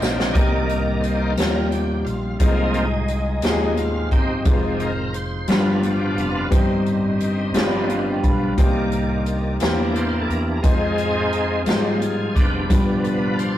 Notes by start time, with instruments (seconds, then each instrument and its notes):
Already playing: tonewheel organ C3 A#3 C4, grand piano D3 A#3 C5 D5 D#5, string section A#4 C5 G5 A#5
0.00 fingered electric bass A#1, grand piano D#3 A#3 D4, tonewheel organ G4, snare, tambourine
0.20 snare
0.33 fingered electric bass C2, grand piano C3 G3 C4 D#4 A#4, tonewheel organ D#3 A#3 D#4 G#4 D5, kick, closed hi-hat
0.68 tonewheel organ A#4, closed hi-hat
1.01 tonewheel organ C5, closed hi-hat
1.36 fingered electric bass D#2, grand piano G3 C4 D#4 F4, tonewheel organ A#4, closed hi-hat
1.40 snare
1.71 tonewheel organ G4, closed hi-hat
2.05 fingered electric bass A#1, tonewheel organ F4, closed hi-hat
2.39 fingered electric bass C2, grand piano C3 G#3 D#4 F4 C5, tonewheel organ F3 G#3 A#3 C4 D#4, kick, closed hi-hat
2.74 closed hi-hat
3.08 closed hi-hat
3.42 fingered electric bass D#2, grand piano G#3 D#4 F4 G4, snare, closed hi-hat
3.50 grand piano G#4
3.77 tonewheel organ F4, closed hi-hat
4.11 fingered electric bass G1, tonewheel organ C4 D#4 G4, kick, closed hi-hat
4.45 fingered electric bass F1, tonewheel organ F3 G#3 D#4, grand piano G#3 D#4 F4 B4, kick, closed hi-hat
4.53 grand piano C5
4.80 tonewheel organ A#4, closed hi-hat
5.13 tonewheel organ C5, closed hi-hat
5.48 fingered electric bass G1, grand piano G2 G3 D4 F4 A#4, tonewheel organ F3 B3 D4 F4 B4, snare, closed hi-hat
5.56 grand piano B4
5.82 tonewheel organ G4, closed hi-hat
6.17 fingered electric bass F1, tonewheel organ F4, closed hi-hat
6.50 fingered electric bass G1, grand piano G2 G3 C4 D#4 C5, tonewheel organ G3 C4 D#4, kick, closed hi-hat
6.86 closed hi-hat
7.21 closed hi-hat
7.54 fingered electric bass G1, grand piano G2 G3 D4 F4 G#4, tonewheel organ F3 B3 D4, snare, closed hi-hat
7.62 grand piano B4
7.89 grand piano F5, closed hi-hat
8.06 grand piano G5
8.23 fingered electric bass B1, grand piano B5, kick, closed hi-hat
8.57 fingered electric bass C2, grand piano C3 A#3 D#4 G4 C5, tonewheel organ D#3 A#3 D5, kick, closed hi-hat
8.92 closed hi-hat
9.26 closed hi-hat
9.60 fingered electric bass E2, tonewheel organ E3 A#3 D4, grand piano E3 A#3 E4 G4 C5, snare, closed hi-hat
9.95 tonewheel organ C5, closed hi-hat
10.21 tonewheel organ A4
10.29 fingered electric bass E2, tonewheel organ A#4, closed hi-hat
10.56 tonewheel organ A#4
10.62 fingered electric bass F2, tonewheel organ F3 G#3 C4 D#4 G#4, grand piano G#3 D#4 F4 C5, kick, closed hi-hat
10.98 closed hi-hat
11.33 closed hi-hat
11.66 fingered electric bass G#2, grand piano G3 D#4 F4 C5, tonewheel organ G#3 D#4 G4 C5, snare, closed hi-hat
11.73 grand piano G#3
12.00 tonewheel organ G#4, closed hi-hat
12.35 fingered electric bass F1, tonewheel organ B3 D4 G4, kick, closed hi-hat
12.68 fingered electric bass G1, grand piano G2 G3 D4 F4 B4, tonewheel organ B2 F3 D4, kick, closed hi-hat
13.03 tonewheel organ B4, closed hi-hat
13.38 tonewheel organ C5, closed hi-hat